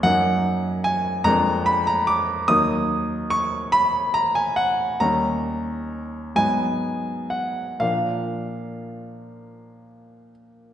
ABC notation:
X:1
M:6/8
L:1/16
Q:3/8=45
K:Ebm
V:1 name="Grand piano"
g4 a2 b2 c' b =d'2 | e'4 d'2 c'2 b a g2 | b6 a4 g2 | f8- f2 z2 |]
V:2 name="Grand piano"
[G,,G,B,E]6 [F,,A,B,=D]6 | [E,,G,B,E]12 | [E,,=G,DE]6 [A,,_G,CE]6 | [B,,F,B,=D]12 |]